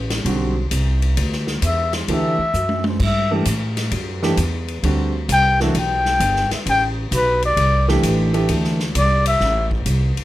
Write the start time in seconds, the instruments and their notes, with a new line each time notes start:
Already playing: upright bass A1
0.10 snare, ride
0.25 upright bass B1, grand piano D3 G3 C4 F#4, ride
0.71 upright bass C2, hi-hat pedal, ride
1.02 ride
1.17 upright bass D2, ride
1.32 snare
1.47 snare
1.62 upright bass E2, trumpet E5, hi-hat pedal, ride
1.93 trumpet C5, snare, ride
2.08 upright bass D2, grand piano E3 A3 D4 G4, ride
2.12 trumpet E5
2.38 muted upright bass stroke
2.53 upright bass F#2, hi-hat pedal
2.69 high tom
2.84 trumpet C5, high tom
3.00 upright bass G2, trumpet E5, kick, crash
3.31 grand piano E3 A3 D4 G4
3.45 upright bass A2, hi-hat pedal, ride
3.77 snare, ride
3.91 upright bass F#2, ride
4.22 grand piano E3 A3 D4 G4, snare
4.37 upright bass E2, hi-hat pedal, ride
4.68 ride
4.83 upright bass D2, grand piano D3 G3 C4 F#4, ride
5.29 upright bass C2, trumpet G5, hi-hat pedal, ride
5.60 grand piano E3 A3 D4 F#4, trumpet E5, snare
5.74 upright bass B1, ride
5.79 trumpet G5
6.05 snare
6.20 upright bass G1, hi-hat pedal, ride
6.36 snare
6.51 trumpet E5, muted upright bass stroke, snare, ride
6.66 upright bass A1, trumpet G5, ride
7.11 upright bass B1, hi-hat pedal, ride
7.16 trumpet B4
7.42 trumpet D5, ride
7.57 upright bass C2, ride
7.88 grand piano E3 A3 D4 G4, snare
8.03 upright bass A1, hi-hat pedal, ride
8.33 grand piano E3 A3 D4 G4, ride
8.49 upright bass D2, grand piano E3 A3 D4 G4, ride
8.64 snare
8.80 snare
8.95 upright bass C2, trumpet D5, hi-hat pedal, ride
9.26 trumpet E5, ride
9.40 upright bass A1, snare
9.71 kick
9.86 upright bass C2, hi-hat pedal, ride
10.17 muted upright bass stroke, ride